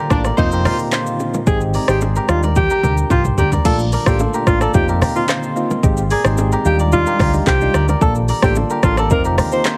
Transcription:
Already playing: ambient pad A#2 D3 F4 A4, kora C5 D5
0.00 kora G4 A#4
0.10 fingered electric bass A1, synth keys A3 A#3 D4 F4, horn section D4 D5, alto saxophone D4, kick, cross-stick, shaker
0.25 kora A#4 D5, cross-stick, shaker
0.37 fingered electric bass F1, ambient pad D#3 C4, synth keys A#3 C4 D#4 F4, horn section C4 C5, alto saxophone D#4, kick, low conga, shaker
0.52 kora G4 A#4, shaker
0.65 alto saxophone F4, kora G4 A#4, cross-stick, open hi-hat, low bongo, low conga, shaker
0.79 shaker
0.92 kora F4 C5, cross-stick, clap, high bongo, shaker
1.06 shaker
1.20 high bongo, shaker
1.34 low bongo, shaker
1.47 fingered electric bass G#1, synth keys G#3 C4 D#4 G4, ambient pad G#3 C4 G4, alto saxophone G#4, kick, low conga, shaker
1.61 shaker
1.74 kora A#4 D5, open hi-hat, shaker
1.88 fingered electric bass G#1, synth keys G#3 C4 D#4 G4, alto saxophone G4, kora G#4 C5, cross-stick, shaker
2.01 high bongo, shaker
2.16 kora G4 A#4, shaker
2.28 fingered electric bass D#2, ambient pad D#3 G3 D4 F4, synth keys G3 D4 D#4 F4, alto saxophone F4, cross-stick, shaker
2.43 kora A#4 D5, low bongo, shaker
2.56 alto saxophone G4, kick, high tom, low conga, shaker
2.70 kora G4 A#4, shaker
2.83 fingered electric bass D2, kora G4 A#4, mid tom, low bongo, low conga, shaker
2.97 shaker
3.10 fingered electric bass C2, alto saxophone F4, kora G4 C5, kick, mid tom, high bongo, shaker
3.25 mid tom, shaker
3.38 fingered electric bass D2, alto saxophone G4, kora A#4 D5, floor tom, high bongo, shaker
3.52 kora A#4 D5, floor tom, low bongo, shaker
3.65 fingered electric bass A#1, ambient pad A#2 D3 F4 A4, synth keys A3 A#3 D4 F4, alto saxophone A4, kick, crash, low conga, shaker
3.79 shaker
3.92 kora A#4 D5, open hi-hat, shaker
4.06 fingered electric bass A1, synth keys A3 A#3 D4 F4, alto saxophone G4, kora A4 C5, kick, cross-stick, shaker
4.19 high bongo, shaker
4.34 kora G4 A#4, shaker
4.47 fingered electric bass A1, synth keys A3 A#3 D4 F4, alto saxophone F4, kick, cross-stick, shaker
4.61 alto saxophone A4, kora A#4 D5, cross-stick, shaker
4.74 fingered electric bass F1, ambient pad D#3 C4, synth keys A#3 C4 D#4 F4, alto saxophone G4, kick, low conga, shaker
4.88 kora G4 A#4, shaker
5.02 kora G4 A#4, cross-stick, open hi-hat, low bongo, low conga, shaker
5.15 synth keys A#3 C4 D#4 F4, alto saxophone F4, shaker
5.29 kora F4 C5, cross-stick, clap, high bongo, shaker
5.43 shaker
5.56 synth keys A#3 C4 D#4 F4, shaker
5.71 low bongo, shaker
5.83 fingered electric bass G#1, synth keys G#3 C4 D#4 G4, ambient pad G#3 G4, kick, low conga, shaker
5.97 shaker
6.10 alto saxophone G#4, kora A#4 D5, open hi-hat, shaker
6.25 fingered electric bass G#1, synth keys G#3 C4 D#4 G4, kora G#4 C5, cross-stick, shaker
6.38 high bongo, shaker
6.52 kora G4 A#4, shaker
6.65 fingered electric bass D#2, synth keys G3 D4 D#4 F4, ambient pad G3 F4 D5, alto saxophone G4, shaker
6.79 kora A#4 D5, shaker
6.92 synth keys G3 D4 D#4 F4, alto saxophone F4, low conga, shaker
7.06 kora G4 A#4, shaker
7.19 fingered electric bass D2, kora G4 A#4, kick, cross-stick, open hi-hat, low bongo, low conga, shaker
7.34 synth keys G3 D4 D#4 F4, shaker
7.47 fingered electric bass C2, alto saxophone G4, kora G4 C5, kick, clap, high bongo, shaker
7.61 synth keys G3 D4 D#4 F4, shaker
7.74 fingered electric bass D2, kora A#4 D5, cross-stick, shaker
7.88 kora A#4 D5, low bongo, shaker
8.01 fingered electric bass A#1, ambient pad D3 A#3 A4, synth keys A#3 D4 F4 A4, alto saxophone A4, kick, low conga, shaker
8.15 shaker
8.28 kora A#4 D5, open hi-hat, shaker
8.42 fingered electric bass A1, synth keys A#3 D4 F4 A4, alto saxophone G4, kora A4 C5, kick, cross-stick, shaker
8.56 high bongo, shaker
8.70 kora G4 A#4, shaker
8.83 fingered electric bass A1, synth keys A#3 D4 F4 A4, alto saxophone F4, kick, cross-stick, shaker
8.97 alto saxophone A4, kora A#4 D5, cross-stick, shaker
9.10 fingered electric bass F1, ambient pad D#3 C4, synth keys C4 D#4 F4 A#4, alto saxophone A#4, kick, low conga, shaker
9.25 kora G4 A#4, shaker
9.38 kora G4 A#4, cross-stick, open hi-hat, low bongo, low conga, shaker
9.52 synth keys C4 D#4 F4 A#4, alto saxophone C5, shaker
9.65 kora F4 C5, cross-stick, clap, high bongo, shaker

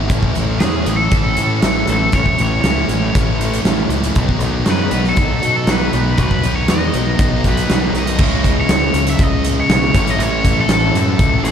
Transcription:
Already playing: distorted electric guitar E3 E4
0.10 fingered electric bass A1, distorted electric guitar A2 E3 A3 C#4 E4, kick, closed hi-hat
0.23 kick
0.34 fingered electric bass A1, distorted electric guitar A3 C#4 E4, closed hi-hat
0.59 fingered electric bass E2, distorted electric guitar E3 A3 C#4 E4, overdriven electric guitar G#4, snare, closed hi-hat
0.85 fingered electric bass A1, distorted electric guitar A2 E3 A3 C#4 E4, closed hi-hat
0.97 overdriven electric guitar A4
1.11 fingered electric bass A1, distorted electric guitar E3 A3 C#4 E4, kick, closed hi-hat
1.37 fingered electric bass A2, distorted electric guitar A3 C#4 E4, closed hi-hat
1.62 fingered electric bass A1, distorted electric guitar A2 E3 A3 C#4 E4, snare, closed hi-hat
1.88 fingered electric bass A1, distorted electric guitar A3 C#4 E4, overdriven electric guitar A4, closed hi-hat
2.12 fingered electric bass A1, distorted electric guitar A2 E3 A3 C#4, overdriven electric guitar C#5, kick, closed hi-hat
2.17 distorted electric guitar E4
2.26 kick
2.38 fingered electric bass A1, distorted electric guitar C#4 E4, overdriven electric guitar C#5, closed hi-hat
2.43 distorted electric guitar A3
2.64 fingered electric bass C#2, distorted electric guitar E3 A3 C#4 E4, snare, closed hi-hat
2.88 fingered electric bass A1, distorted electric guitar A3 C#4 E4, closed hi-hat
2.92 distorted electric guitar A2 E3
3.15 fingered electric bass A1, distorted electric guitar E3 A3 C#4 E4, kick, closed hi-hat
3.41 distorted electric guitar A3 C#4 E4, closed hi-hat
3.54 closed hi-hat
3.65 fingered electric bass A1, distorted electric guitar A2 E3 A3 C#4 E4, snare, closed hi-hat
3.89 fingered electric bass C#2, distorted electric guitar E4, closed hi-hat
3.94 distorted electric guitar A3 C#4
4.04 closed hi-hat
4.15 fingered electric bass B1, distorted electric guitar B2 D#3 F#3 B3 D#4, kick, closed hi-hat
4.29 kick
4.39 fingered electric bass B1, distorted electric guitar D#4, closed hi-hat
4.44 distorted electric guitar F#3 B3
4.66 fingered electric bass F#2, distorted electric guitar D#3 F#3 B3 D#4, snare, closed hi-hat
4.71 overdriven electric guitar B4
4.91 fingered electric bass B1, distorted electric guitar B2 D#3 F#3 B3 D#4, closed hi-hat
5.04 snare
5.10 overdriven electric guitar A4
5.16 fingered electric bass B1, distorted electric guitar D#3 F#3 B3 D#4, kick, closed hi-hat
5.42 fingered electric bass B2, distorted electric guitar F#3 B3 D#4, closed hi-hat
5.56 overdriven electric guitar A4
5.67 fingered electric bass B1, distorted electric guitar B2 D#3 F#3 B3, overdriven electric guitar B4, snare, closed hi-hat
5.72 distorted electric guitar D#4
5.93 fingered electric bass B1, distorted electric guitar F#3 B3 D#4, closed hi-hat
6.18 fingered electric bass B1, distorted electric guitar B2 D#3 F#3 B3, overdriven electric guitar B4, kick, closed hi-hat
6.22 distorted electric guitar D#4
6.31 kick
6.43 fingered electric bass B1, distorted electric guitar B3 D#4, closed hi-hat
6.47 distorted electric guitar F#3
6.56 overdriven electric guitar C#5
6.68 fingered electric bass E2, distorted electric guitar D#3 F#3 B3, overdriven electric guitar D#5, snare, closed hi-hat
6.73 distorted electric guitar D#4
6.93 fingered electric bass B1, distorted electric guitar B2 D#3 F#3 B3 D#4, closed hi-hat
7.19 fingered electric bass B1, distorted electric guitar D#3 F#3 B3 D#4, kick, closed hi-hat
7.44 distorted electric guitar F#3 B3 D#4, kick, closed hi-hat
7.49 overdriven electric guitar B4
7.57 closed hi-hat
7.69 fingered electric bass B1, distorted electric guitar B2 D#3 F#3 B3 D#4, snare, closed hi-hat
7.93 fingered electric bass B1, distorted electric guitar B3 D#4, closed hi-hat
7.98 distorted electric guitar F#3, overdriven electric guitar D#5
8.07 closed hi-hat
8.18 fingered electric bass C#2, distorted electric guitar C#3 G#3 C#4 E4, kick, crash
8.44 kick, closed hi-hat
8.61 overdriven electric guitar C#5
8.69 fingered electric bass C#2, snare, closed hi-hat
8.94 fingered electric bass C#2, closed hi-hat
9.07 overdriven electric guitar E5, closed hi-hat
9.19 fingered electric bass C#2, kick, closed hi-hat
9.24 overdriven electric guitar D#5
9.44 closed hi-hat
9.60 overdriven electric guitar C#5
9.69 fingered electric bass B1, snare, closed hi-hat
9.95 fingered electric bass A1, distorted electric guitar A2 E3 A3 C#4 E4, kick, closed hi-hat
10.07 overdriven electric guitar D#5, closed hi-hat
10.18 fingered electric bass A1, closed hi-hat
10.22 overdriven electric guitar C#5
10.45 kick, closed hi-hat
10.61 overdriven electric guitar A4
10.68 fingered electric bass A1, snare, closed hi-hat
10.73 overdriven electric guitar A4
10.93 fingered electric bass F#2, closed hi-hat
11.19 fingered electric bass C#2, kick, closed hi-hat
11.43 fingered electric bass A1, overdriven electric guitar A4, closed hi-hat

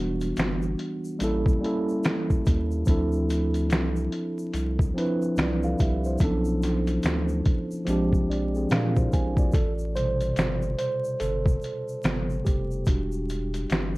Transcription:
Already playing: sub bass E1, tine electric piano E3 G3 B3 D4 F#4
0.21 closed hi-hat, shaker
0.37 sub bass G1, finger snap, snare, closed hi-hat, shaker
0.62 shaker
0.79 closed hi-hat
1.04 shaker
1.19 sub bass A1, tine electric piano G3 A#3 C#4 E4, closed hi-hat, shaker
1.24 tine electric piano A4
1.46 kick, shaker
1.61 tine electric piano G3 A#3 C#4 E4, closed hi-hat
1.66 tine electric piano A4
1.89 shaker
2.03 finger snap, snare, closed hi-hat, shaker
2.30 kick, shaker
2.46 sub bass D#2, kick, closed hi-hat, shaker
2.71 shaker
2.85 sub bass D2, tine electric piano F3 C4 D4 E4, kick, closed hi-hat, shaker
2.90 tine electric piano A4
3.12 shaker
3.30 closed hi-hat, shaker
3.54 closed hi-hat, shaker
3.70 sub bass C2, finger snap, snare, closed hi-hat, shaker
3.96 shaker
4.12 closed hi-hat
4.38 shaker
4.53 sub bass C2, closed hi-hat, shaker
4.79 kick, shaker
4.94 tine electric piano F3 C4 D4 E4
4.98 tine electric piano B4, closed hi-hat
5.22 shaker
5.36 sub bass C2, tine electric piano F4 D5, finger snap, snare, closed hi-hat, shaker
5.63 tine electric piano A4 F5, shaker
5.79 sub bass C2, tine electric piano G4 E5, kick, closed hi-hat, shaker
6.04 tine electric piano E4 C5, shaker
6.18 sub bass B1, tine electric piano F3 B3 C#4, kick, closed hi-hat, shaker
6.23 tine electric piano D4 A4
6.45 shaker
6.62 snare, closed hi-hat, shaker
6.87 closed hi-hat, shaker
7.03 sub bass D2, finger snap, snare, closed hi-hat, shaker
7.28 shaker
7.46 kick, closed hi-hat
7.71 shaker
7.85 sub bass A#1, tine electric piano F3 G#3 C4 D4, closed hi-hat, shaker
7.90 tine electric piano G4
8.12 kick, shaker
8.29 sub bass A#1, tine electric piano D5, closed hi-hat
8.55 tine electric piano C4 G#4, shaker
8.69 sub bass A#2, tine electric piano D4 A#4 F5, finger snap, snare, closed hi-hat, shaker
8.96 tine electric piano E4 C5, kick, shaker
9.12 sub bass A#1, tine electric piano G#5, kick, closed hi-hat, shaker
9.37 tine electric piano F4 D5, kick, shaker
9.52 sub bass A1, tine electric piano A4, kick, closed hi-hat, shaker
9.79 shaker
9.95 tine electric piano B2 C3 G3 C5, closed hi-hat, shaker
10.21 closed hi-hat, shaker
10.36 sub bass G1, finger snap, snare, closed hi-hat, shaker
10.62 shaker
10.79 tine electric piano C5, closed hi-hat, shaker
11.04 shaker
11.20 sub bass G1, tine electric piano A4, closed hi-hat, shaker
11.46 kick, shaker
11.61 closed hi-hat, shaker
11.88 shaker
12.03 sub bass G1, tine electric piano C3 G3 B3, finger snap, snare, closed hi-hat, shaker
12.30 shaker
12.45 sub bass F1, tine electric piano G4, kick, closed hi-hat, shaker
12.71 shaker
12.85 sub bass E1, tine electric piano G3 D4 F#4, kick, closed hi-hat, shaker
13.12 shaker
13.29 closed hi-hat, shaker
13.54 closed hi-hat, shaker
13.70 sub bass G1, finger snap, snare, closed hi-hat, shaker

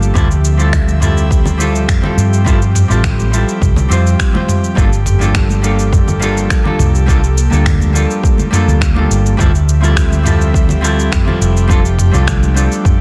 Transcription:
Already playing: fingered electric bass G1, analog synth pad F3 A#3 G4 A4, hollow-body jazz guitar G3 A#3 D4 F4 A4
0.02 cabasa
0.14 fingered electric bass D2, hollow-body jazz guitar G3 C4 E4 F4 A4, analog synth pad C4 E5, kick, mid tom, cabasa
0.31 cabasa
0.45 cabasa
0.57 hollow-body jazz guitar G3 C4 E4 F4 A4, cabasa
0.73 finger snap, kick, low conga, cabasa
0.88 high conga, cabasa
1.00 hollow-body jazz guitar G3 C4 E4 F4, mid tom, cabasa
1.04 hollow-body jazz guitar A4
1.17 cabasa
1.31 kick, cabasa
1.46 low conga, cabasa
1.58 hollow-body jazz guitar G3 C4 E4 F4, cabasa
1.62 hollow-body jazz guitar A4
1.75 cabasa
1.89 finger snap, kick, mid tom, cabasa
2.02 hollow-body jazz guitar G3 C4 E4 F4 A4, low conga
2.17 fingered electric bass G2, cabasa
2.33 cabasa
2.44 hollow-body jazz guitar G3 C4 E4 F4 A4, kick, cabasa
2.62 cabasa
2.75 mid tom, cabasa
2.88 fingered electric bass A1, hollow-body jazz guitar G3 C4 E4 F4 A4, cabasa
3.04 finger snap, kick, low conga, cabasa
3.19 high conga, cabasa
3.31 hollow-body jazz guitar G3 C4 E4 F4 A4, cabasa
3.49 cabasa
3.61 fingered electric bass C2, kick, mid tom, cabasa
3.76 high conga, low conga, cabasa
3.89 fingered electric bass F2, hollow-body jazz guitar G3 C4 E4 F4, cabasa
3.93 hollow-body jazz guitar C5
4.07 cabasa
4.19 finger snap, kick, cabasa
4.32 hollow-body jazz guitar G3 C4 E4 F4, high conga, low conga
4.36 hollow-body jazz guitar C5
4.48 mid tom, cabasa
4.64 cabasa
4.75 fingered electric bass G1, hollow-body jazz guitar G3 A#3 D4 F4 A4, analog synth pad A#3 A4, kick, cabasa
4.93 cabasa
5.06 mid tom, cabasa
5.19 hollow-body jazz guitar G3 A#3 D4 F4, cabasa
5.23 hollow-body jazz guitar A4
5.35 finger snap, kick, low conga, cabasa
5.50 high conga, cabasa
5.62 hollow-body jazz guitar G3 A#3 D4 F4 A4, cabasa
5.79 cabasa
5.93 kick, mid tom, cabasa
6.08 low conga, cabasa
6.19 hollow-body jazz guitar G3 A#3 D4 F4 A4, cabasa
6.37 cabasa
6.50 finger snap, kick, cabasa
6.63 hollow-body jazz guitar G3 A#3 D4 F4 A4, low conga
6.79 fingered electric bass C2, mid tom, cabasa
6.95 cabasa
7.06 hollow-body jazz guitar G3 A#3 D4 F4, kick, cabasa
7.10 hollow-body jazz guitar A4
7.24 cabasa
7.38 cabasa
7.50 fingered electric bass D2, hollow-body jazz guitar G3 A#3 D4 F4 A4, cabasa
7.66 finger snap, kick, mid tom, low conga, cabasa
7.80 high conga, cabasa
7.93 hollow-body jazz guitar G3 A#3 D4 F4 A4, cabasa
8.10 cabasa
8.23 kick, cabasa
8.38 high conga, low conga, cabasa
8.51 hollow-body jazz guitar G3 A#3 D4 F4 A4, mid tom, cabasa
8.67 fingered electric bass D2, cabasa
8.81 finger snap, kick, cabasa
8.94 hollow-body jazz guitar G3 A#3 D4 F4 A4, high conga, low conga
9.10 fingered electric bass G1, cabasa
9.26 cabasa
9.37 fingered electric bass D2, analog synth pad F3 C4 G4 E5, hollow-body jazz guitar G3 C4 E4 F4, kick, mid tom, cabasa
9.41 hollow-body jazz guitar A4
9.55 cabasa
9.69 cabasa
9.81 hollow-body jazz guitar G3 C4 E4 F4 A4, cabasa
9.96 finger snap, kick, low conga, cabasa
10.12 high conga, cabasa
10.23 hollow-body jazz guitar G3 C4 E4 F4 A4, mid tom, cabasa
10.41 cabasa
10.54 kick, cabasa
10.69 low conga, cabasa
10.81 hollow-body jazz guitar G3 C4 E4 F4 A4, cabasa
10.99 cabasa
11.12 finger snap, kick, mid tom, cabasa
11.25 hollow-body jazz guitar G3 C4 E4 F4 A4, low conga
11.41 fingered electric bass F1, cabasa
11.57 cabasa
11.68 hollow-body jazz guitar G3 C4 D4 F4, analog synth pad A3 D4, kick, cabasa
11.72 hollow-body jazz guitar A4
11.85 cabasa
11.99 mid tom, cabasa
12.11 fingered electric bass C2, hollow-body jazz guitar G3 C4 D4 F4 A4, cabasa
12.27 finger snap, kick, low conga, cabasa
12.43 high conga, cabasa
12.54 hollow-body jazz guitar G3 C4 D4 F4 A4, cabasa
12.72 cabasa
12.85 kick, mid tom, cabasa

